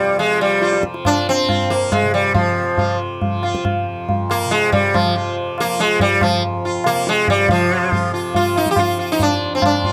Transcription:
Already playing: tanpura F2 C3 F3, sitar G3
0.19 tanpura F3, sitar G#3, tabla tin
0.41 sitar G3, tabla na
0.62 sitar F4, tabla te
0.73 tabla te
0.79 tanpura F3
0.83 tabla ke
0.94 tabla te
1.05 sitar D4, tabla na, tabla ge
1.29 sitar C4
1.40 tanpura F2
1.49 sitar F4, tabla na, tabla ge
1.70 sitar A#3, tabla te
1.92 sitar G#3, tabla na, tabla ge
2.02 tanpura C3
2.14 sitar G3
2.34 sitar F3, tabla tin, tabla ge
2.62 tanpura F3
2.77 sitar F4, tabla tin, tabla ge
3.22 tanpura F3, tabla tin, tabla ge
3.43 sitar F4, tabla na
3.55 tabla ke
3.65 tabla na, tabla ge
3.83 tanpura F2
4.09 tabla tin, tabla ge
4.30 sitar A#3, tabla na
4.45 tanpura C3
4.51 sitar G#3, tabla te
4.72 sitar G3, tabla tin, tabla ge
4.94 sitar F3, tabla na, tabla ge
5.05 tanpura F3
5.16 sitar F4
5.58 sitar A#3, tabla na
5.64 tanpura F3
5.80 sitar G#3, tabla te
6.00 sitar G3, tabla tin, tabla ge
6.21 tanpura F2, sitar F3, tabla na, tabla ge
6.65 sitar F4
6.84 tanpura C3, sitar A#3, tabla na
7.07 sitar G#3, tabla te
7.28 sitar G3, tabla tin, tabla ge
7.47 tanpura C3, sitar F3 F4, tabla tin, tabla ge
7.72 sitar F4
7.92 sitar F4, tabla tin, tabla ge
8.09 tanpura F3
8.14 sitar F4
8.34 sitar F4, tabla tin, tabla ge
8.56 sitar D#4, tabla na
8.66 tanpura F3, tabla ke
8.71 sitar G4
8.76 sitar F4, tabla na, tabla ge
8.99 sitar F4
9.12 sitar D#4
9.19 sitar D4, tabla tin, tabla ge
9.28 tanpura F2
9.55 sitar C4
9.62 sitar D4, tabla na, tabla ge
9.84 sitar F4, tabla ge
9.89 tanpura C3

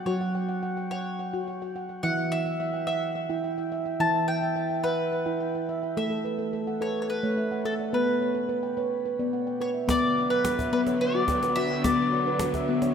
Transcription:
Already playing: handpan G5
0.06 handpan F#3 F#4 F#5, mandolin C#5
0.21 handpan F#5
0.35 handpan G5
0.49 handpan F#5
0.63 handpan F#5
0.77 handpan G5
0.91 mandolin C#5, handpan F#5 G5
1.19 handpan F#5
1.33 handpan F#4 G5
1.48 handpan G5
1.62 handpan G5
1.76 handpan F#5
1.89 handpan G5
2.03 handpan E3 E4 E5, mandolin F#5
2.18 handpan E5
2.31 mandolin E5, handpan F#5
2.46 handpan E5
2.60 handpan E5
2.73 handpan G5
2.87 mandolin E5, handpan E5 F#5
3.15 handpan E5
3.30 handpan E4 G5
3.44 handpan G5
3.58 handpan G5
3.72 handpan E5
3.86 handpan G5
4.00 handpan E3 E4, mandolin A5
4.14 handpan E5
4.28 mandolin G5, handpan G5
4.42 handpan E5
4.56 handpan E5
4.70 handpan G5
4.84 mandolin B4, handpan E5 F#5
5.12 handpan E5
5.26 handpan E4 G5
5.41 handpan G5
5.55 handpan G5
5.69 handpan E5
5.83 handpan G5
5.97 handpan A3 A4, mandolin E5
6.10 handpan A4
6.25 handpan B4
6.39 handpan A4
6.53 handpan A4
6.67 handpan F#5
6.81 handpan A4 B4, mandolin C#5
7.02 mandolin C#5
7.09 handpan A4, mandolin B4
7.23 handpan A3 C#5
7.37 handpan E5
7.51 handpan F#5
7.65 handpan A4, mandolin A4
7.79 handpan D5
7.93 handpan B3 B4, mandolin B4
8.07 handpan B4
8.21 handpan C#5
8.35 handpan B4
8.49 handpan B4
8.63 handpan G5
8.77 handpan B4 C#5
9.05 handpan B4
9.19 handpan B3 D5
9.33 handpan F#5
9.47 handpan G5
9.60 handpan B4, mandolin C#5
9.74 handpan E5
9.88 string section D3 F#3 B3, handpan B3, mandolin D5, cajon bass, cajon slap
10.30 handpan B4, mandolin B4, cajon slap
10.45 cajon slap
10.59 handpan E5, cajon bass
10.72 handpan B3, mandolin B4
10.87 handpan C#5, cajon slap
11.01 handpan B4, mandolin D5
11.15 handpan F#4, cajon slap
11.28 handpan G5, cajon bass, cajon slap
11.43 handpan B4, cajon slap
11.56 handpan F#4, mandolin E5
11.71 handpan G5
11.84 handpan B3, mandolin D5, cajon bass, cajon slap
12.13 handpan D5
12.26 handpan B4, cajon slap
12.39 cajon slap
12.54 handpan E5, cajon bass, cajon slap
12.69 handpan B3
12.82 handpan C#5, cajon slap

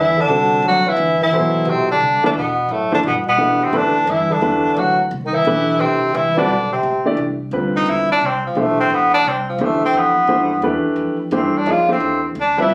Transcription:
Already playing: upright bass E2, bass clarinet E3, tenor saxophone E4
0.18 bass clarinet D3, tenor saxophone D4
0.28 upright bass C2, grand piano D3 G3 C4 F#4 A4
0.62 upright bass D2, bass clarinet F#3
0.68 tenor saxophone F#4
0.84 bass clarinet E3, muted upright bass stroke
0.89 tenor saxophone E4
0.96 upright bass G1
1.19 bass clarinet E3, muted upright bass stroke
1.23 tenor saxophone E4
1.31 upright bass A1, grand piano B2 F#3 E4 A4 C5
1.65 upright bass B1, bass clarinet C3
1.70 tenor saxophone C4
1.90 bass clarinet D3, tenor saxophone D4
2.00 upright bass C2
2.22 bass clarinet D3, grand piano E3 A3 D4 G4 B4, tenor saxophone D4, muted upright bass stroke
2.34 upright bass E2, bass clarinet B2
2.38 tenor saxophone B3
2.69 upright bass F#2, bass clarinet A2, tenor saxophone A3
2.92 bass clarinet D3, grand piano E3 A3 D4 G4 C5, tenor saxophone D4
3.03 upright bass G2, bass clarinet B2
3.07 tenor saxophone B3
3.26 bass clarinet B2, tenor saxophone B3
3.37 upright bass B2, grand piano E3 A3 D4 G4 B4
3.61 bass clarinet C3, tenor saxophone C4
3.73 upright bass A2, bass clarinet D3, grand piano E3 A3 D4 G4 B4
3.77 tenor saxophone D4
4.06 upright bass G2, bass clarinet E3, tenor saxophone E4
4.31 bass clarinet D3, tenor saxophone D4
4.41 upright bass E2, grand piano E3 A3 D4 G4 B4
4.77 upright bass D2, bass clarinet F#3, tenor saxophone F#4
5.11 upright bass C2
5.24 bass clarinet D#3, tenor saxophone D#4
5.34 bass clarinet E3, tenor saxophone E4
5.45 upright bass B1, grand piano E3 A3 D4 G4 B4
5.80 upright bass E2, bass clarinet C3, tenor saxophone C4
6.02 muted upright bass stroke
6.13 upright bass C2, bass clarinet E3, tenor saxophone E4
6.36 bass clarinet D3, grand piano G3 C4 F#4 B4 D5, tenor saxophone D4
6.49 upright bass B1
6.72 bass clarinet C3, tenor saxophone C4
6.83 upright bass A1
7.05 grand piano E3 A3 D4 G4 D5
7.17 upright bass C2
7.51 upright bass D2, grand piano D3 G3 C4 F4 B4
7.77 tenor saxophone D#4
7.86 upright bass E2
7.90 tenor saxophone E4
8.09 tenor saxophone D4, muted upright bass stroke
8.21 upright bass C2
8.26 tenor saxophone C4
8.46 tenor saxophone F3
8.55 upright bass B1, grand piano E3 A3 D4 G4 C5
8.61 tenor saxophone A3
8.80 tenor saxophone C4
8.90 upright bass A1, tenor saxophone B3
9.14 tenor saxophone D4
9.25 upright bass C2, tenor saxophone C4
9.49 tenor saxophone F3
9.58 upright bass D2, grand piano E3 A3 D4 G4 C5
9.64 tenor saxophone A3
9.81 muted upright bass stroke
9.85 tenor saxophone C4
9.94 upright bass F2
9.98 tenor saxophone B3
10.27 upright bass G2, grand piano E3 A3 D4 G4 C5
10.62 upright bass E2, grand piano E3 A3 D4 G4 B4
10.84 muted upright bass stroke
10.96 upright bass F2
11.31 upright bass G2, grand piano E3 A3 D4 G4 C5
11.36 tenor saxophone C4
11.58 tenor saxophone D4
11.66 upright bass F2, grand piano F3 A#3 D#4 G#4 C#5
11.72 tenor saxophone F4
11.89 grand piano E3 A3 D4 G4 C5, tenor saxophone C4
12.00 upright bass E2
12.35 upright bass D2
12.40 tenor saxophone D4
12.58 grand piano G3 C4 F4 B4 E5, tenor saxophone E4
12.70 upright bass B1

